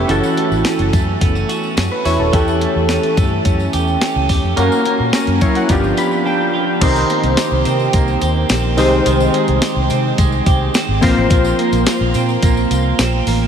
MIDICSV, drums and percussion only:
0, 0, Header, 1, 2, 480
1, 0, Start_track
1, 0, Tempo, 560748
1, 75, Time_signature, 4, 2, 24, 8
1, 11535, End_track
2, 0, Start_track
2, 0, Title_t, "Drums"
2, 77, Note_on_c, 9, 54, 43
2, 78, Note_on_c, 9, 42, 82
2, 163, Note_off_c, 9, 54, 0
2, 164, Note_off_c, 9, 42, 0
2, 201, Note_on_c, 9, 54, 47
2, 286, Note_off_c, 9, 54, 0
2, 320, Note_on_c, 9, 42, 65
2, 406, Note_off_c, 9, 42, 0
2, 443, Note_on_c, 9, 54, 32
2, 528, Note_off_c, 9, 54, 0
2, 554, Note_on_c, 9, 42, 87
2, 555, Note_on_c, 9, 38, 100
2, 562, Note_on_c, 9, 54, 80
2, 640, Note_off_c, 9, 38, 0
2, 640, Note_off_c, 9, 42, 0
2, 647, Note_off_c, 9, 54, 0
2, 677, Note_on_c, 9, 42, 48
2, 763, Note_off_c, 9, 42, 0
2, 798, Note_on_c, 9, 54, 50
2, 799, Note_on_c, 9, 42, 60
2, 800, Note_on_c, 9, 36, 96
2, 883, Note_off_c, 9, 54, 0
2, 884, Note_off_c, 9, 42, 0
2, 885, Note_off_c, 9, 36, 0
2, 1039, Note_on_c, 9, 36, 85
2, 1039, Note_on_c, 9, 42, 86
2, 1042, Note_on_c, 9, 54, 42
2, 1124, Note_off_c, 9, 42, 0
2, 1125, Note_off_c, 9, 36, 0
2, 1127, Note_off_c, 9, 54, 0
2, 1162, Note_on_c, 9, 54, 29
2, 1248, Note_off_c, 9, 54, 0
2, 1278, Note_on_c, 9, 54, 49
2, 1279, Note_on_c, 9, 42, 75
2, 1363, Note_off_c, 9, 54, 0
2, 1365, Note_off_c, 9, 42, 0
2, 1398, Note_on_c, 9, 54, 25
2, 1484, Note_off_c, 9, 54, 0
2, 1515, Note_on_c, 9, 54, 80
2, 1521, Note_on_c, 9, 38, 98
2, 1521, Note_on_c, 9, 42, 83
2, 1601, Note_off_c, 9, 54, 0
2, 1606, Note_off_c, 9, 38, 0
2, 1607, Note_off_c, 9, 42, 0
2, 1758, Note_on_c, 9, 46, 70
2, 1758, Note_on_c, 9, 54, 51
2, 1843, Note_off_c, 9, 54, 0
2, 1844, Note_off_c, 9, 46, 0
2, 1996, Note_on_c, 9, 54, 43
2, 1997, Note_on_c, 9, 36, 110
2, 1997, Note_on_c, 9, 42, 88
2, 2081, Note_off_c, 9, 54, 0
2, 2083, Note_off_c, 9, 36, 0
2, 2083, Note_off_c, 9, 42, 0
2, 2121, Note_on_c, 9, 54, 49
2, 2206, Note_off_c, 9, 54, 0
2, 2238, Note_on_c, 9, 42, 65
2, 2324, Note_off_c, 9, 42, 0
2, 2472, Note_on_c, 9, 42, 86
2, 2473, Note_on_c, 9, 38, 99
2, 2481, Note_on_c, 9, 54, 83
2, 2558, Note_off_c, 9, 38, 0
2, 2558, Note_off_c, 9, 42, 0
2, 2566, Note_off_c, 9, 54, 0
2, 2597, Note_on_c, 9, 42, 48
2, 2683, Note_off_c, 9, 42, 0
2, 2716, Note_on_c, 9, 54, 50
2, 2717, Note_on_c, 9, 36, 102
2, 2717, Note_on_c, 9, 42, 65
2, 2802, Note_off_c, 9, 42, 0
2, 2802, Note_off_c, 9, 54, 0
2, 2803, Note_off_c, 9, 36, 0
2, 2954, Note_on_c, 9, 42, 85
2, 2957, Note_on_c, 9, 36, 89
2, 2960, Note_on_c, 9, 54, 44
2, 3039, Note_off_c, 9, 42, 0
2, 3043, Note_off_c, 9, 36, 0
2, 3046, Note_off_c, 9, 54, 0
2, 3078, Note_on_c, 9, 54, 30
2, 3163, Note_off_c, 9, 54, 0
2, 3195, Note_on_c, 9, 42, 71
2, 3198, Note_on_c, 9, 54, 52
2, 3281, Note_off_c, 9, 42, 0
2, 3284, Note_off_c, 9, 54, 0
2, 3316, Note_on_c, 9, 54, 27
2, 3402, Note_off_c, 9, 54, 0
2, 3437, Note_on_c, 9, 38, 101
2, 3437, Note_on_c, 9, 42, 83
2, 3437, Note_on_c, 9, 54, 81
2, 3522, Note_off_c, 9, 38, 0
2, 3522, Note_off_c, 9, 42, 0
2, 3522, Note_off_c, 9, 54, 0
2, 3674, Note_on_c, 9, 46, 74
2, 3676, Note_on_c, 9, 36, 77
2, 3676, Note_on_c, 9, 54, 50
2, 3759, Note_off_c, 9, 46, 0
2, 3762, Note_off_c, 9, 36, 0
2, 3762, Note_off_c, 9, 54, 0
2, 3913, Note_on_c, 9, 42, 87
2, 3915, Note_on_c, 9, 54, 43
2, 3998, Note_off_c, 9, 42, 0
2, 4001, Note_off_c, 9, 54, 0
2, 4040, Note_on_c, 9, 54, 45
2, 4125, Note_off_c, 9, 54, 0
2, 4156, Note_on_c, 9, 42, 64
2, 4241, Note_off_c, 9, 42, 0
2, 4391, Note_on_c, 9, 42, 89
2, 4392, Note_on_c, 9, 38, 105
2, 4402, Note_on_c, 9, 54, 78
2, 4477, Note_off_c, 9, 38, 0
2, 4477, Note_off_c, 9, 42, 0
2, 4487, Note_off_c, 9, 54, 0
2, 4513, Note_on_c, 9, 42, 47
2, 4599, Note_off_c, 9, 42, 0
2, 4634, Note_on_c, 9, 42, 62
2, 4634, Note_on_c, 9, 54, 51
2, 4636, Note_on_c, 9, 36, 99
2, 4720, Note_off_c, 9, 42, 0
2, 4720, Note_off_c, 9, 54, 0
2, 4722, Note_off_c, 9, 36, 0
2, 4753, Note_on_c, 9, 54, 28
2, 4754, Note_on_c, 9, 42, 57
2, 4839, Note_off_c, 9, 54, 0
2, 4840, Note_off_c, 9, 42, 0
2, 4871, Note_on_c, 9, 42, 93
2, 4875, Note_on_c, 9, 36, 92
2, 4877, Note_on_c, 9, 54, 46
2, 4957, Note_off_c, 9, 42, 0
2, 4961, Note_off_c, 9, 36, 0
2, 4963, Note_off_c, 9, 54, 0
2, 4997, Note_on_c, 9, 54, 31
2, 5083, Note_off_c, 9, 54, 0
2, 5113, Note_on_c, 9, 54, 50
2, 5115, Note_on_c, 9, 42, 74
2, 5198, Note_off_c, 9, 54, 0
2, 5200, Note_off_c, 9, 42, 0
2, 5233, Note_on_c, 9, 54, 26
2, 5319, Note_off_c, 9, 54, 0
2, 5832, Note_on_c, 9, 54, 47
2, 5833, Note_on_c, 9, 36, 107
2, 5834, Note_on_c, 9, 42, 94
2, 5834, Note_on_c, 9, 49, 95
2, 5917, Note_off_c, 9, 54, 0
2, 5919, Note_off_c, 9, 36, 0
2, 5919, Note_off_c, 9, 49, 0
2, 5920, Note_off_c, 9, 42, 0
2, 5957, Note_on_c, 9, 54, 49
2, 6043, Note_off_c, 9, 54, 0
2, 6077, Note_on_c, 9, 42, 66
2, 6163, Note_off_c, 9, 42, 0
2, 6193, Note_on_c, 9, 42, 54
2, 6279, Note_off_c, 9, 42, 0
2, 6310, Note_on_c, 9, 42, 91
2, 6311, Note_on_c, 9, 38, 102
2, 6312, Note_on_c, 9, 54, 64
2, 6314, Note_off_c, 9, 54, 0
2, 6314, Note_on_c, 9, 54, 82
2, 6396, Note_off_c, 9, 42, 0
2, 6397, Note_off_c, 9, 38, 0
2, 6400, Note_off_c, 9, 54, 0
2, 6550, Note_on_c, 9, 54, 52
2, 6552, Note_on_c, 9, 42, 69
2, 6635, Note_off_c, 9, 54, 0
2, 6638, Note_off_c, 9, 42, 0
2, 6672, Note_on_c, 9, 54, 29
2, 6757, Note_off_c, 9, 54, 0
2, 6791, Note_on_c, 9, 42, 98
2, 6795, Note_on_c, 9, 36, 97
2, 6797, Note_on_c, 9, 54, 47
2, 6876, Note_off_c, 9, 42, 0
2, 6880, Note_off_c, 9, 36, 0
2, 6883, Note_off_c, 9, 54, 0
2, 6915, Note_on_c, 9, 54, 32
2, 7000, Note_off_c, 9, 54, 0
2, 7031, Note_on_c, 9, 54, 52
2, 7032, Note_on_c, 9, 42, 74
2, 7117, Note_off_c, 9, 54, 0
2, 7118, Note_off_c, 9, 42, 0
2, 7270, Note_on_c, 9, 54, 81
2, 7273, Note_off_c, 9, 54, 0
2, 7273, Note_on_c, 9, 54, 66
2, 7274, Note_on_c, 9, 38, 108
2, 7274, Note_on_c, 9, 42, 87
2, 7358, Note_off_c, 9, 54, 0
2, 7360, Note_off_c, 9, 38, 0
2, 7360, Note_off_c, 9, 42, 0
2, 7511, Note_on_c, 9, 54, 56
2, 7514, Note_on_c, 9, 46, 75
2, 7596, Note_off_c, 9, 54, 0
2, 7599, Note_off_c, 9, 46, 0
2, 7753, Note_on_c, 9, 54, 46
2, 7755, Note_on_c, 9, 42, 91
2, 7839, Note_off_c, 9, 54, 0
2, 7841, Note_off_c, 9, 42, 0
2, 7878, Note_on_c, 9, 54, 51
2, 7964, Note_off_c, 9, 54, 0
2, 7996, Note_on_c, 9, 42, 70
2, 8081, Note_off_c, 9, 42, 0
2, 8115, Note_on_c, 9, 42, 54
2, 8200, Note_off_c, 9, 42, 0
2, 8233, Note_on_c, 9, 42, 90
2, 8234, Note_on_c, 9, 38, 101
2, 8235, Note_on_c, 9, 54, 65
2, 8238, Note_off_c, 9, 54, 0
2, 8238, Note_on_c, 9, 54, 79
2, 8319, Note_off_c, 9, 38, 0
2, 8319, Note_off_c, 9, 42, 0
2, 8323, Note_off_c, 9, 54, 0
2, 8472, Note_on_c, 9, 54, 55
2, 8479, Note_on_c, 9, 42, 65
2, 8558, Note_off_c, 9, 54, 0
2, 8564, Note_off_c, 9, 42, 0
2, 8716, Note_on_c, 9, 42, 89
2, 8716, Note_on_c, 9, 54, 47
2, 8717, Note_on_c, 9, 36, 94
2, 8801, Note_off_c, 9, 42, 0
2, 8802, Note_off_c, 9, 54, 0
2, 8803, Note_off_c, 9, 36, 0
2, 8836, Note_on_c, 9, 54, 30
2, 8922, Note_off_c, 9, 54, 0
2, 8956, Note_on_c, 9, 54, 53
2, 8957, Note_on_c, 9, 42, 76
2, 8958, Note_on_c, 9, 36, 95
2, 9042, Note_off_c, 9, 54, 0
2, 9043, Note_off_c, 9, 36, 0
2, 9043, Note_off_c, 9, 42, 0
2, 9195, Note_on_c, 9, 54, 86
2, 9200, Note_off_c, 9, 54, 0
2, 9200, Note_on_c, 9, 54, 68
2, 9202, Note_on_c, 9, 38, 107
2, 9202, Note_on_c, 9, 42, 89
2, 9286, Note_off_c, 9, 54, 0
2, 9287, Note_off_c, 9, 38, 0
2, 9287, Note_off_c, 9, 42, 0
2, 9434, Note_on_c, 9, 54, 53
2, 9438, Note_on_c, 9, 36, 83
2, 9438, Note_on_c, 9, 46, 73
2, 9520, Note_off_c, 9, 54, 0
2, 9524, Note_off_c, 9, 36, 0
2, 9524, Note_off_c, 9, 46, 0
2, 9673, Note_on_c, 9, 54, 48
2, 9677, Note_on_c, 9, 36, 114
2, 9679, Note_on_c, 9, 42, 94
2, 9759, Note_off_c, 9, 54, 0
2, 9763, Note_off_c, 9, 36, 0
2, 9764, Note_off_c, 9, 42, 0
2, 9797, Note_on_c, 9, 54, 52
2, 9882, Note_off_c, 9, 54, 0
2, 9921, Note_on_c, 9, 42, 70
2, 10007, Note_off_c, 9, 42, 0
2, 10036, Note_on_c, 9, 54, 35
2, 10039, Note_on_c, 9, 42, 54
2, 10121, Note_off_c, 9, 54, 0
2, 10125, Note_off_c, 9, 42, 0
2, 10155, Note_on_c, 9, 54, 84
2, 10157, Note_on_c, 9, 38, 102
2, 10157, Note_on_c, 9, 42, 94
2, 10159, Note_off_c, 9, 54, 0
2, 10159, Note_on_c, 9, 54, 69
2, 10242, Note_off_c, 9, 42, 0
2, 10243, Note_off_c, 9, 38, 0
2, 10244, Note_off_c, 9, 54, 0
2, 10392, Note_on_c, 9, 54, 54
2, 10400, Note_on_c, 9, 42, 64
2, 10478, Note_off_c, 9, 54, 0
2, 10485, Note_off_c, 9, 42, 0
2, 10518, Note_on_c, 9, 54, 30
2, 10603, Note_off_c, 9, 54, 0
2, 10636, Note_on_c, 9, 42, 91
2, 10638, Note_on_c, 9, 36, 94
2, 10638, Note_on_c, 9, 54, 49
2, 10722, Note_off_c, 9, 42, 0
2, 10724, Note_off_c, 9, 36, 0
2, 10724, Note_off_c, 9, 54, 0
2, 10760, Note_on_c, 9, 54, 33
2, 10846, Note_off_c, 9, 54, 0
2, 10879, Note_on_c, 9, 42, 78
2, 10879, Note_on_c, 9, 54, 50
2, 10965, Note_off_c, 9, 42, 0
2, 10965, Note_off_c, 9, 54, 0
2, 11118, Note_on_c, 9, 54, 85
2, 11119, Note_on_c, 9, 38, 105
2, 11119, Note_on_c, 9, 42, 91
2, 11204, Note_off_c, 9, 38, 0
2, 11204, Note_off_c, 9, 42, 0
2, 11204, Note_off_c, 9, 54, 0
2, 11357, Note_on_c, 9, 54, 57
2, 11359, Note_on_c, 9, 46, 76
2, 11443, Note_off_c, 9, 54, 0
2, 11445, Note_off_c, 9, 46, 0
2, 11535, End_track
0, 0, End_of_file